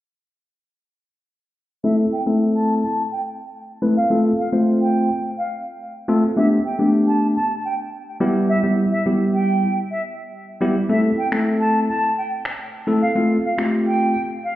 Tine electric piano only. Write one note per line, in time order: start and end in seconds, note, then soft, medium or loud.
1.84 2.05 A3 medium
1.84 2.05 C4 medium
1.84 2.05 E4 medium
1.84 2.05 A4 medium
2.26 2.83 A3 medium
2.26 2.83 C4 medium
2.26 2.83 E4 medium
2.26 2.83 A4 medium
3.82 3.96 A3 medium
3.82 3.96 C4 medium
3.82 3.96 E4 medium
3.82 3.96 B4 medium
4.10 4.32 A3 medium
4.10 4.32 C4 medium
4.10 4.32 F4 medium
4.10 4.32 A4 medium
4.52 5.09 A3 medium
4.52 5.09 C4 medium
4.52 5.09 F4 medium
4.52 5.09 C5 medium
6.08 6.22 A3 medium
6.08 6.22 C4 medium
6.08 6.23 F4 medium
6.08 6.23 A4 loud
6.37 6.58 A3 medium
6.37 6.58 B3 medium
6.37 6.58 D4 medium
6.37 6.58 G4 medium
6.79 7.36 A3 medium
6.79 7.36 B3 medium
6.79 7.36 D4 medium
6.79 7.36 G4 medium
8.20 8.54 G3 medium
8.20 8.55 B3 medium
8.20 8.55 E4 medium
8.20 8.55 G4 loud
8.63 8.84 G3 medium
8.63 8.84 B3 medium
8.63 8.84 E4 medium
8.63 8.84 G4 medium
9.06 9.62 G3 medium
9.06 9.62 B3 medium
9.06 9.62 E4 medium
9.06 9.62 G4 medium
10.61 10.75 G3 medium
10.61 10.75 B3 medium
10.61 10.75 E4 medium
10.61 10.75 G4 medium
10.89 11.11 A3 medium
10.89 11.11 C4 medium
10.89 11.11 E4 medium
10.89 11.11 A4 medium
11.32 11.88 A3 medium
11.32 11.88 C4 medium
11.32 11.88 E4 medium
11.32 11.89 A4 medium
12.87 13.01 A3 medium
12.87 13.02 C4 medium
12.87 13.02 E4 medium
12.87 13.02 A4 medium
13.16 13.37 A3 medium
13.16 13.37 C4 medium
13.16 13.37 F4 medium
13.16 13.37 A4 medium
13.58 14.15 A3 medium
13.58 14.15 C4 medium
13.58 14.15 F4 medium
13.58 14.15 G4 medium